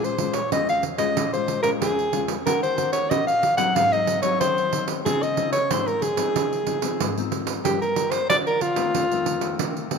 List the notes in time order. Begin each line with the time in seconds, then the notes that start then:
Already playing: A#2 G#3 C#4 F4
0.04 C5, pandeiro
0.18 G#3 C#4 F4, pandeiro
0.33 C#5, pandeiro
0.52 F2 G#3 C#4 F4 D#5, pandeiro
0.69 F5, pandeiro
0.83 pandeiro
0.98 G#3 C#4 F4 D#5, pandeiro
1.16 A#2, pandeiro
1.33 G#3 C#4 F4 C5, pandeiro
1.48 pandeiro
1.63 G#3 C#4 F4 A#4, pandeiro
1.81 F2 G#4, pandeiro
1.99 pandeiro
2.13 G#3 C#4 F4, pandeiro
2.28 pandeiro
2.46 D#3 A#3 C#4 F#4 A#4, pandeiro
2.63 C5, pandeiro
2.77 A#3 C#4 F#4, pandeiro
2.92 C#5, pandeiro
3.10 A#2 A#3 C#4 F#4 D#5, pandeiro
3.27 F5, pandeiro
3.43 pandeiro
3.57 F#3 C4 D#4 F#5, pandeiro
3.75 G#2 F5, pandeiro
3.92 F#3 C4 D#4 D#5, pandeiro
4.07 pandeiro
4.22 F#3 C4 D#4 C#5, pandeiro
4.40 D#3 C5, pandeiro
4.58 pandeiro
4.73 F#3 C4 D#4, pandeiro
4.88 pandeiro
5.05 C#3 F3 C4 D#4 G#4, pandeiro
5.23 D#5, pandeiro
5.37 F3 C4 D#4, pandeiro
5.52 C#5, pandeiro
5.70 G#2 F3 C4 D#4 C5, pandeiro
5.87 A#4, pandeiro
6.02 G#4, pandeiro
6.17 F3 C4 D#4, pandeiro
6.35 C#3, pandeiro
6.53 pandeiro
6.67 F3 C4 D#4, pandeiro
6.82 F3 C4 D#4, pandeiro
7.00 G#2, pandeiro
7.17 F3 C4 D#4, pandeiro
7.32 pandeiro
7.47 pandeiro
7.65 G2 F3 A#3 D4 G4, pandeiro
7.82 A#4, pandeiro
7.96 F3 A#3 D4, pandeiro
8.11 C5, pandeiro
8.29 D3 F3 A#3 D4 D5, pandeiro
8.46 A#4, pandeiro
8.61 F4, pandeiro
8.76 D#3 A3 C4, pandeiro
8.94 F2, pandeiro
9.11 D#3 A3 C4, pandeiro
9.26 pandeiro
9.41 D#3 A3 C4, pandeiro
9.59 C3, pandeiro
9.77 pandeiro
9.91 D#3 A3 C4, pandeiro